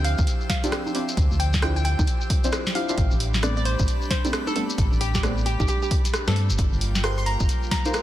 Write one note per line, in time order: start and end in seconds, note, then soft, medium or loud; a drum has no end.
0.00 0.15 D2 loud
0.00 2.94 F3 medium
0.00 0.60 C4 medium
0.00 0.60 D4 medium
0.00 0.60 E4 medium
0.00 0.60 F4 medium
0.00 0.60 G4 medium
0.00 6.32 G4 medium
0.00 2.94 C5 medium
0.00 2.94 E6 medium
0.04 0.19 F5 medium
0.04 open hi-hat loud
0.18 0.26 D2 medium
0.18 kick loud
0.18 shekere medium
0.27 closed hi-hat medium
0.27 shekere medium
0.41 shekere soft
0.50 1.14 F5 medium
0.50 kick medium
0.50 snare medium
0.50 open hi-hat loud
0.64 0.93 C4 loud
0.64 0.93 D4 medium
0.64 0.93 F4 medium
0.64 0.93 G4 loud
0.64 closed hi-hat medium
0.64 high conga medium
0.64 shekere medium
0.72 cross-stick loud
0.72 closed hi-hat medium
0.72 shekere medium
0.86 high conga medium
0.86 shekere soft
0.95 1.04 C4 medium
0.95 1.04 D4 medium
0.95 1.04 E4 medium
0.95 1.04 F4 medium
0.95 1.04 G4 medium
0.95 open hi-hat loud
1.09 closed hi-hat soft
1.09 shekere medium
1.17 1.29 D2 loud
1.17 kick loud
1.17 closed hi-hat medium
1.17 shekere medium
1.31 1.95 D2 loud
1.31 shekere soft
1.40 1.55 G5 loud
1.40 open hi-hat loud
1.53 kick medium
1.53 snare medium
1.53 shekere medium
1.61 1.72 C4 medium
1.61 1.72 D4 medium
1.61 1.72 E4 medium
1.61 1.72 F4 medium
1.61 1.72 G4 loud
1.61 1.71 G5 medium
1.61 cross-stick loud
1.61 closed hi-hat medium
1.61 shekere medium
1.76 1.82 G5 medium
1.76 shekere soft
1.85 2.00 G5 medium
1.85 open hi-hat loud
1.99 2.06 D2 medium
1.99 kick loud
1.99 high conga medium
1.99 shekere medium
2.07 closed hi-hat medium
2.07 shekere medium
2.21 shekere soft
2.30 kick loud
2.30 open hi-hat loud
2.44 2.50 C4 loud
2.44 2.50 D4 medium
2.44 2.50 E4 medium
2.44 2.50 F4 medium
2.44 2.50 C5 loud
2.44 closed hi-hat medium
2.44 shekere medium
2.52 cross-stick loud
2.52 closed hi-hat medium
2.52 shekere medium
2.67 snare medium
2.67 shekere soft
2.75 2.86 C4 medium
2.75 2.86 D4 medium
2.75 2.86 E4 medium
2.75 2.86 F4 medium
2.75 2.86 G4 medium
2.75 2.84 F5 loud
2.75 open hi-hat medium
2.89 2.97 C4 loud
2.89 2.97 D4 medium
2.89 2.97 E4 medium
2.89 2.97 F4 medium
2.89 2.97 G4 loud
2.89 2.95 F5 medium
2.89 closed hi-hat soft
2.89 shekere medium
2.98 3.09 A1 loud
2.98 8.02 G3 medium
2.98 6.33 D4 medium
2.98 6.33 B5 medium
2.98 kick loud
2.98 closed hi-hat medium
2.98 shekere medium
3.11 3.76 A1 loud
3.11 shekere soft
3.20 open hi-hat loud
3.34 snare medium
3.34 shekere medium
3.43 4.21 G3 medium
3.43 4.21 A3 medium
3.43 4.21 B3 medium
3.43 4.21 C4 medium
3.43 4.21 D4 loud
3.43 3.52 D5 medium
3.43 cross-stick loud
3.43 closed hi-hat medium
3.43 shekere medium
3.57 3.62 D5 medium
3.57 shekere soft
3.65 3.80 C5 medium
3.65 open hi-hat medium
3.79 3.87 A1 loud
3.79 kick loud
3.79 shekere medium
3.88 closed hi-hat medium
3.88 shekere medium
4.02 shekere soft
4.11 4.75 C5 medium
4.11 kick medium
4.11 snare medium
4.11 open hi-hat loud
4.25 4.54 G3 loud
4.25 4.54 A3 medium
4.25 4.54 C4 medium
4.25 4.54 D4 loud
4.25 closed hi-hat medium
4.25 high conga medium
4.25 shekere medium
4.33 cross-stick loud
4.33 closed hi-hat medium
4.33 shekere medium
4.47 4.53 A4 medium
4.47 high conga medium
4.47 shekere soft
4.56 4.65 G3 medium
4.56 4.65 A3 medium
4.56 4.65 B3 medium
4.56 4.65 C4 medium
4.56 4.65 D4 medium
4.56 4.65 A4 medium
4.56 open hi-hat medium
4.70 closed hi-hat soft
4.70 shekere medium
4.78 4.90 A1 loud
4.78 kick loud
4.78 closed hi-hat medium
4.78 shekere medium
4.92 5.56 A1 loud
4.92 shekere soft
5.01 5.10 G4 medium
5.01 open hi-hat loud
5.14 5.20 G4 medium
5.14 kick medium
5.14 snare medium
5.14 shekere medium
5.23 5.33 G3 medium
5.23 5.33 A3 medium
5.23 5.33 B3 medium
5.23 5.33 C4 medium
5.23 5.33 D4 loud
5.23 cross-stick loud
5.23 closed hi-hat medium
5.23 shekere medium
5.37 shekere soft
5.46 5.55 G4 medium
5.46 open hi-hat medium
5.60 5.67 A1 loud
5.60 5.65 G4 medium
5.60 kick loud
5.60 high conga medium
5.60 shekere medium
5.68 5.77 G4 medium
5.68 closed hi-hat medium
5.68 shekere medium
5.82 5.88 G4 medium
5.82 shekere soft
5.91 kick loud
5.91 open hi-hat loud
6.05 closed hi-hat medium
6.05 shekere medium
6.14 cross-stick loud
6.14 closed hi-hat medium
6.14 shekere medium
6.28 6.52 G2 loud
6.28 6.33 G3 medium
6.28 6.33 A3 medium
6.28 6.33 B3 medium
6.28 6.33 C4 medium
6.28 6.33 D4 loud
6.28 6.42 A4 medium
6.28 snare medium
6.28 shekere soft
6.36 8.02 A#3 medium
6.36 8.02 F4 medium
6.36 8.02 G5 medium
6.36 open hi-hat medium
6.50 6.57 G1 loud
6.50 closed hi-hat soft
6.50 shekere medium
6.58 6.70 G1 loud
6.58 kick loud
6.58 closed hi-hat medium
6.58 shekere medium
6.73 7.37 G1 loud
6.73 shekere soft
6.81 open hi-hat loud
6.95 snare medium
6.95 shekere medium
7.04 7.82 F4 medium
7.04 7.82 G4 medium
7.04 7.82 A4 medium
7.04 7.82 A#4 medium
7.04 7.82 C5 loud
7.04 7.13 C6 medium
7.04 cross-stick loud
7.04 closed hi-hat medium
7.04 shekere medium
7.18 7.23 C6 medium
7.18 shekere soft
7.26 7.41 A#5 medium
7.26 open hi-hat medium
7.40 7.47 G1 loud
7.40 kick loud
7.40 shekere medium
7.49 closed hi-hat medium
7.49 shekere medium
7.63 shekere soft
7.71 8.02 A#5 medium
7.71 kick medium
7.71 snare medium
7.71 open hi-hat loud
7.85 8.02 F4 loud
7.85 8.02 G4 medium
7.85 8.02 A#4 medium
7.85 8.02 C5 loud
7.85 closed hi-hat medium
7.85 high conga medium
7.85 shekere medium
7.93 cross-stick loud
7.93 closed hi-hat medium
7.93 shekere medium